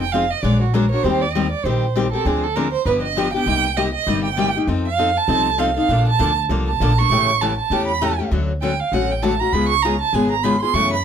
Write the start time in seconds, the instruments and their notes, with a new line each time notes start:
Already playing: upright bass F1
0.01 violin G5
0.12 steel-string acoustic guitar F3 C4 D#4 G#4, violin F5
0.30 violin D#5
0.43 upright bass A#1, steel-string acoustic guitar F#3 G#3 D4 F#4 A#4, violin D5
0.62 violin F#4
0.74 steel-string acoustic guitar F#3 G#3 D4 F#4 A#4, violin A#4
0.91 steel-string acoustic guitar D4 F#4 A#4, violin C#5
1.03 upright bass D#2, steel-string acoustic guitar D#3 G3 C4 G4 A#4, violin C5
1.21 violin D5
1.33 steel-string acoustic guitar D#3 G3 C4 G4 A#4, violin D#5
1.51 violin D5
1.64 upright bass A#1, steel-string acoustic guitar D#3 G3 C4 G4 A#4, violin C5
1.96 steel-string acoustic guitar D#3 G3 C4 G4 A#4
2.12 steel-string acoustic guitar C4 G4 A#4, violin A4
2.25 upright bass D2, steel-string acoustic guitar D3 F3 C4 D4 G#4, violin G#4
2.44 violin A4
2.55 steel-string acoustic guitar D3 F3 C4 D4 G#4, violin A#4
2.72 violin C5
2.86 upright bass G1, steel-string acoustic guitar D3 F3 B3 D4 G4, violin B4
3.02 violin D#5
3.16 steel-string acoustic guitar D3 F3 B3 D4 G4
3.33 steel-string acoustic guitar B3 D4 G4, violin G5
3.46 upright bass C2, steel-string acoustic guitar C3 G3 A#3 D#4 G4
3.77 steel-string acoustic guitar C3 G3 A#3 D#4 G4, violin D#5
3.94 violin D#5
4.07 upright bass G1, steel-string acoustic guitar C3 G3 A#3 D#4 G4
4.25 violin G5
4.37 steel-string acoustic guitar C3 G3 A#3 D#4 G4
4.55 steel-string acoustic guitar A#3 D#4 G4
4.67 upright bass F2, steel-string acoustic guitar F3 C4 D#4 A4
4.86 violin F5
4.98 steel-string acoustic guitar F3 C4 D#4 A4
5.17 violin A5
5.28 upright bass C2, steel-string acoustic guitar F3 C4 D#4 A4
5.58 steel-string acoustic guitar F3 C4 D#4 A4, violin F5
5.77 steel-string acoustic guitar C4 D#4 A4, violin F5
5.89 upright bass A#1, steel-string acoustic guitar D3 F3 A#3 D4 A4
6.09 violin A5
6.19 upright bass D2, steel-string acoustic guitar D3 F3 A#3 D4 A4
6.49 upright bass C2, steel-string acoustic guitar D3 F3 A#3 D4 A4
6.68 violin A5
6.80 upright bass A#1, steel-string acoustic guitar D3 F3 A#3 D4 A4
6.98 steel-string acoustic guitar A#3 D4 A4, violin C#6
7.10 upright bass A1, steel-string acoustic guitar C#3 E3 A3 C#4 G4
7.41 steel-string acoustic guitar C#3 E3 A3 C#4 G4, violin A5
7.59 violin A5
7.70 upright bass E2, steel-string acoustic guitar C#3 E3 A3 C#4 G4
7.88 violin B5
8.01 steel-string acoustic guitar C#3 E3 A3 C#4 G4
8.19 steel-string acoustic guitar A3 C#4 G4
8.31 upright bass D2, steel-string acoustic guitar D3 F#3 A3 C#4 F#4
8.62 steel-string acoustic guitar D3 F#3 A3 C#4 F#4, violin G5
8.80 violin F5
8.92 upright bass A1, steel-string acoustic guitar D3 F#3 A3 C#4 F#4, violin F#5
9.11 violin G5
9.22 steel-string acoustic guitar D3 F#3 A3 C#4 F#4, violin A5
9.40 steel-string acoustic guitar A3 C#4 F#4, violin A#5
9.53 upright bass C#2, steel-string acoustic guitar C#3 G#3 B3 F4 G#4, violin B5
9.69 violin C#6
9.82 steel-string acoustic guitar C#3 G#3 B3 F4 G#4, violin A#5
10.01 violin A5
10.13 upright bass G#1, steel-string acoustic guitar C#3 G#3 B3 F4 G#4, violin G#5
10.31 violin A#5
10.43 steel-string acoustic guitar C#3 G#3 B3 F4 G#4, violin B5
10.61 steel-string acoustic guitar B3 F4 G#4, violin C6
10.74 upright bass F#2, steel-string acoustic guitar C#3 E3 A3 C#4 F#4, violin C#6
10.93 violin B5